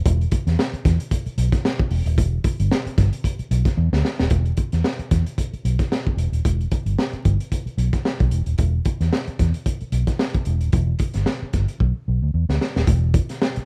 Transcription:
0.06 E1, kick, closed hi-hat
0.21 closed hi-hat
0.31 kick, closed hi-hat
0.47 E2, snare, closed hi-hat
0.59 snare
0.73 muted fingered electric bass stroke, closed hi-hat
0.85 E2, kick, snare, closed hi-hat
1.00 closed hi-hat
1.11 kick, closed hi-hat
1.26 muted fingered electric bass stroke, closed hi-hat
1.38 B1, closed hi-hat
1.52 kick, snare, closed hi-hat
1.65 snare
1.79 kick
1.91 E1, open hi-hat
2.06 D#1, closed hi-hat
2.18 E1, kick, closed hi-hat
2.44 kick, closed hi-hat
2.60 G1, closed hi-hat
2.71 snare
2.86 muted fingered electric bass stroke, closed hi-hat
2.98 G1, kick, snare, closed hi-hat
3.13 closed hi-hat
3.24 kick, closed hi-hat
3.39 muted fingered electric bass stroke, closed hi-hat
3.51 B1, closed hi-hat
3.65 kick, snare, closed hi-hat
3.77 E2
3.93 D2, snare
4.05 snare
4.19 D#1, snare
4.30 E1, kick, closed hi-hat
4.46 closed hi-hat
4.57 kick, closed hi-hat
4.72 E2, snare, closed hi-hat
4.84 snare
4.99 muted fingered electric bass stroke, closed hi-hat
5.11 E2, kick, snare, closed hi-hat
5.26 closed hi-hat
5.38 kick, closed hi-hat
5.53 muted fingered electric bass stroke, closed hi-hat
5.65 B1, closed hi-hat
5.79 kick, snare, closed hi-hat
5.92 snare
6.07 kick
6.17 E1, closed hi-hat
6.32 D#1, closed hi-hat
6.45 E1, kick, closed hi-hat
6.61 closed hi-hat
6.71 kick, closed hi-hat
6.86 G1, closed hi-hat
6.99 snare
7.13 muted fingered electric bass stroke, closed hi-hat
7.25 G1, kick, closed hi-hat
7.40 closed hi-hat
7.52 kick, closed hi-hat
7.66 muted fingered electric bass stroke, closed hi-hat
7.78 B1, closed hi-hat
7.93 kick, snare, closed hi-hat
8.05 snare
8.20 B1, kick, closed hi-hat
8.31 E1, closed hi-hat
8.46 D#1, closed hi-hat
8.58 E1, kick, closed hi-hat
8.85 kick, closed hi-hat
9.00 E2, snare, closed hi-hat
9.13 snare
9.27 muted fingered electric bass stroke, closed hi-hat
9.39 E2, kick, snare, closed hi-hat
9.54 closed hi-hat
9.66 kick, closed hi-hat
9.81 muted fingered electric bass stroke, closed hi-hat
9.92 B1, closed hi-hat
10.07 kick, snare, closed hi-hat
10.19 snare
10.34 kick, closed hi-hat
10.45 E1, closed hi-hat
10.61 D#1, closed hi-hat
10.72 E1, kick, closed hi-hat
10.99 kick, closed hi-hat
11.14 G1, snare, closed hi-hat
11.26 snare
11.42 muted fingered electric bass stroke
11.53 G1, kick, snare, closed hi-hat
11.68 closed hi-hat
11.80 B1, kick
12.08 B1
12.22 D2
12.34 E2
12.49 D2, snare
12.61 snare
12.76 D#1, snare
12.87 E1, kick, closed hi-hat
13.14 kick, closed hi-hat
13.29 snare, closed hi-hat
13.42 snare
13.56 muted fingered electric bass stroke, closed hi-hat

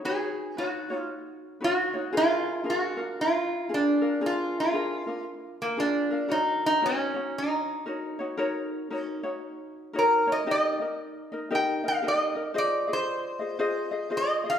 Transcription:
0.05 D#4 F#4 G#4 B4 C#5
0.57 D#4 F#4 B4 C#5
0.90 D#4 F4 F#4 C#5
1.61 D#4 F#4 B4 C#5
1.94 D#4 F#4 C#5
2.13 D4 F4 G#4 A#4
2.17 F4
2.64 D4 F4 G#4 A#4
2.70 F#4
2.97 D4 F4 A#4
3.21 F4
3.69 D4 F4 G#4 A#4
3.74 D4
4.01 D4 F4 A#4
4.21 D4 F4 G#4 A#4
4.26 F4
4.60 F4
4.73 D4 F4 G#4 A#4
5.07 D4 F4 A#4
5.62 A#3
5.77 D4 F4 G#4 A#4
6.11 D4 F4 A#4
6.28 D#4 F#4 A#4 C#5
6.66 D#4
6.81 D#4 F#4 A#4 C#5
6.86 C#4
7.14 D#4 F#4 C#5
7.38 D#4
7.86 D#4 F#4 A#4 C#5
8.19 D#4 F#4 C#5
8.37 D#4 F#4 A#4 C#5
8.90 D#4 F#4 A#4 C#5
9.01 C#4
9.23 D#4 F#4 C#5
9.93 D#4 F#4 A#4 C#5
9.99 A#4
10.27 D#4 F#4 C#5
10.32 D#5
10.47 D#4 G4 A#4 D#5
10.51 D#5
10.80 D#4 A#4 D#5
11.32 D#4 A#4 D#5
11.51 D#4 G4 A#4 D#5
11.55 G5
11.84 D#4 A#4 D#5
11.88 F5
12.02 D#4 G4 A#4 D#5
12.08 D#5
12.35 D#4 A#4 D#5
12.54 F4 G#4 C5 D#5
12.58 D5
12.87 F4 G#4 D#5
12.93 C5
13.39 F4 G#4 D#5
13.59 F4 G#4 C5 D#5
13.91 F4 G#4 D#5
14.10 F4 G#4 C5 D#5
14.17 D#5
14.44 F4 G#4 D#5
14.50 F5

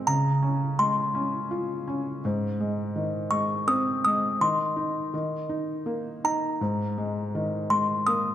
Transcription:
0.07 C#3 A#5
0.42 C#4
0.79 G#3 C6
1.14 C#4
1.51 F4
1.87 C#4
2.25 G#2
2.60 G#3
2.96 D#3
3.31 G#3 C#6
3.67 C4 D#6
4.05 G#3 D#6
4.41 D#3 C6
4.76 D#4
5.14 D#3
5.49 D#4
5.86 A#3
6.24 D#4 A#5
6.61 G#2
6.98 G#3
7.35 D#3
7.70 G#3 C6
8.06 A#3 D#6

